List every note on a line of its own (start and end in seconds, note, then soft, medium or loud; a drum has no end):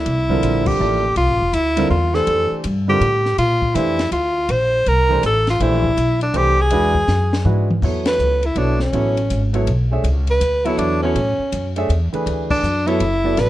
0.00 0.69 E4 medium
0.06 0.42 C2 medium
0.06 ride medium
0.29 0.77 D3 medium
0.29 0.77 F3 medium
0.29 0.77 G3 medium
0.29 0.77 C4 medium
0.29 0.78 A#4 medium
0.29 kick soft
0.43 0.79 A#1 medium
0.43 hi-hat pedal medium
0.43 ride medium
0.66 1.17 G4 medium
0.66 kick medium
0.66 crash medium
0.79 1.15 A1 medium
0.79 1.01 F3 medium
0.79 1.01 A#3 medium
0.79 1.01 E4 medium
0.79 1.01 A4 medium
0.79 1.02 D5 medium
1.16 1.29 C2 medium
1.16 1.56 F4 loud
1.16 ride medium
1.29 1.40 A1 soft
1.40 1.52 F1 medium
1.52 1.89 D2 medium
1.52 1.90 E4 loud
1.52 hi-hat pedal medium
1.52 ride medium
1.76 1.89 D3 medium
1.76 1.89 G3 medium
1.76 1.90 C4 medium
1.76 1.90 F4 medium
1.76 1.90 A#4 medium
1.76 ride medium
1.90 2.26 E2 medium
1.90 2.16 F4 medium
2.13 2.61 E3 medium
2.13 2.62 A3 medium
2.13 2.62 D4 medium
2.13 2.62 G4 medium
2.13 2.59 A4 loud
2.13 2.62 C5 medium
2.13 snare soft
2.27 2.49 F2 medium
2.27 ride medium
2.51 muted upright bass stroke soft
2.64 3.00 G2 medium
2.64 hi-hat pedal soft
2.64 ride medium
2.88 3.00 D3 medium
2.88 3.00 G3 medium
2.88 3.00 C4 medium
2.88 3.01 F4 medium
2.88 3.35 G4 medium
2.88 3.01 A#4 medium
3.01 3.37 A2 medium
3.01 ride medium
3.26 snare soft
3.38 3.74 A#2 medium
3.38 3.77 F4 medium
3.38 ride medium
3.62 kick medium
3.74 4.11 F2 medium
3.74 3.96 E3 medium
3.74 3.96 A3 medium
3.74 3.97 D4 medium
3.74 4.12 E4 loud
3.74 3.97 G4 medium
3.74 3.97 C5 medium
3.74 hi-hat pedal medium
3.74 ride medium
3.99 snare medium
3.99 ride medium
4.11 4.48 D2 medium
4.11 4.52 F4 medium
4.11 ride medium
4.49 4.85 A#1 medium
4.49 4.90 C5 loud
4.49 ride medium
4.86 5.22 C2 medium
4.86 5.24 A#4 loud
4.86 ride medium
5.09 5.22 E3 medium
5.09 5.22 A3 medium
5.09 5.22 D4 medium
5.09 5.23 G4 medium
5.09 5.23 C5 medium
5.23 5.59 A1 medium
5.23 5.47 A4 medium
5.23 hi-hat pedal medium
5.23 ride medium
5.47 5.64 F4 medium
5.47 snare soft
5.47 ride soft
5.60 5.96 A#1 medium
5.60 5.82 E3 medium
5.60 5.82 A3 medium
5.60 5.82 D4 medium
5.60 6.22 E4 loud
5.60 5.82 G4 medium
5.60 5.83 C5 medium
5.60 ride medium
5.84 kick medium
5.97 6.33 B1 medium
5.97 hi-hat pedal medium
5.97 ride medium
6.21 6.39 D4 medium
6.21 ride soft
6.33 6.70 C2 medium
6.33 6.55 E3 medium
6.33 6.56 A3 medium
6.33 6.56 D4 medium
6.33 6.56 G4 medium
6.33 6.56 C5 medium
6.33 ride medium
6.37 6.63 G4 loud
6.61 7.47 G#4 loud
6.70 7.07 E2 medium
6.70 6.93 G#3 medium
6.70 6.93 D4 medium
6.70 6.93 E4 medium
6.70 6.93 F#4 medium
6.70 6.93 B4 medium
6.70 ride medium
6.95 kick medium
7.08 7.44 F#2 medium
7.08 snare medium
7.08 hi-hat pedal medium
7.33 snare medium
7.45 7.81 G#2 medium
7.45 7.66 G#3 medium
7.45 7.66 D4 medium
7.45 7.67 E4 medium
7.45 7.67 F#4 medium
7.45 7.67 B4 medium
7.45 high tom medium
7.71 high tom medium
7.82 8.18 E2 medium
7.82 8.38 F#3 medium
7.82 8.38 B3 medium
7.82 8.39 E4 medium
7.82 8.39 A4 medium
7.82 8.39 C#5 medium
7.82 kick medium
7.82 crash medium
8.06 8.47 B4 medium
8.06 snare medium
8.06 ride medium
8.19 8.55 C#2 medium
8.19 hi-hat pedal medium
8.43 8.59 E4 medium
8.43 ride soft
8.56 8.92 B1 medium
8.56 8.77 F#3 medium
8.56 8.78 B3 medium
8.56 8.81 D4 medium
8.56 8.78 E4 medium
8.56 8.78 A4 medium
8.56 8.78 C#5 medium
8.56 ride medium
8.80 9.51 C#4 medium
8.80 snare soft
8.93 9.29 A1 medium
8.93 9.14 F#3 medium
8.93 9.15 B3 soft
8.93 9.15 E4 medium
8.93 9.15 A4 medium
8.93 9.16 C#5 medium
8.93 ride medium
9.17 ride soft
9.30 9.66 G#1 medium
9.30 hi-hat pedal medium
9.30 ride medium
9.53 9.66 F#3 medium
9.53 9.66 B3 medium
9.53 9.66 E4 medium
9.53 9.66 A4 medium
9.53 9.67 C#5 medium
9.53 ride soft
9.67 10.03 B1 medium
9.67 ride medium
9.91 10.03 A3 medium
9.91 10.03 D4 medium
9.91 10.03 G#4 medium
9.91 10.04 C#5 medium
9.91 10.04 E5 medium
10.04 10.39 C#2 medium
10.04 ride medium
10.27 10.67 B4 medium
10.27 ride medium
10.40 10.77 D2 medium
10.40 hi-hat pedal medium
10.40 ride medium
10.65 11.00 F#3 medium
10.65 11.00 B3 medium
10.65 11.00 E4 medium
10.65 10.80 E4 medium
10.65 11.00 A4 medium
10.65 11.01 C#5 medium
10.65 ride soft
10.78 11.14 E2 medium
10.78 11.02 D4 medium
10.78 ride medium
11.03 11.14 F#3 medium
11.03 11.15 B3 medium
11.03 11.72 C#4 medium
11.03 11.15 E4 medium
11.03 11.15 A4 medium
11.03 11.15 C#5 medium
11.15 11.38 A2 medium
11.15 ride medium
11.39 muted upright bass stroke soft
11.52 11.88 F#2 medium
11.52 hi-hat pedal medium
11.52 ride medium
11.76 11.88 A3 medium
11.76 11.88 D4 medium
11.76 11.89 G#4 medium
11.76 11.89 C#5 medium
11.76 11.89 E5 medium
11.76 ride soft
11.89 12.11 E2 medium
11.89 ride medium
12.13 12.60 E3 medium
12.13 12.61 A3 medium
12.13 12.61 D4 medium
12.13 12.61 G#4 medium
12.13 12.62 B4 medium
12.13 muted upright bass stroke soft
12.13 ride soft
12.26 12.62 D2 medium
12.26 ride medium
12.50 12.89 D4 medium
12.50 kick medium
12.50 crash medium
12.63 12.99 F#2 medium
12.63 hi-hat pedal medium
12.86 12.99 F#3 medium
12.86 12.99 B3 medium
12.86 13.41 E4 medium
12.86 12.99 E4 medium
12.86 12.99 A4 medium
12.86 13.00 C#5 medium
12.86 ride soft
13.00 13.36 F#1 medium
13.00 ride medium
13.24 13.49 F#3 medium
13.24 13.49 B3 medium
13.24 13.49 E4 medium
13.24 13.49 A4 medium
13.24 13.49 D5 medium
13.37 13.49 A1 medium
13.37 13.49 B4 loud
13.37 snare soft
13.37 ride medium